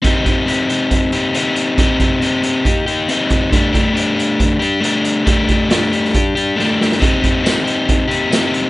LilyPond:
<<
  \new Staff \with { instrumentName = "Overdriven electric guitar" } { \time 4/4 \key c \dorian \tempo 4 = 138 <c' ees' g'>8 <ees' g'>8 <c' ees' g'>8 <ees' g'>4 <ees' g'>8 <c' ees' g'>4 | <c' ees' g'>8 <ees' g'>8 <c' ees' g'>8 <ees' g'>4 <ees' g'>8 <c' ees' g'>4 | <a d' g'>8 <d' g'>8 <a d' g'>8 <d' g'>4 <d' g'>8 <a d' g'>4 | <a d' g'>8 <d' g'>8 <a d' g'>8 <d' g'>4 <d' g'>8 <a d' g'>4 |
<c' ees' g'>8 <ees' g'>8 <c' ees' g'>8 <ees' g'>4 <ees' g'>8 <c' ees' g'>4 | }
  \new DrumStaff \with { instrumentName = "Drums" } \drummode { \time 4/4 <hh bd>8 <hh bd>8 hh8 hh8 <hh bd>8 hh8 hh8 hh8 | <hh bd>8 <hh bd>8 hh8 hh8 <hh bd>8 hh8 hh8 <hh bd>8 | <hh bd>8 <hh bd>8 hh8 hh8 <hh bd>8 hh8 hh8 hh8 | <hh bd>8 <hh bd>8 <hh sn>8 hh16 sn16 <hh bd>8 hh8 sn8 sn16 sn16 |
<hh bd>8 <hh bd>8 <hh sn tamb>8 hh8 <hh bd>8 hh8 <hh sn tamb>8 hh8 | }
>>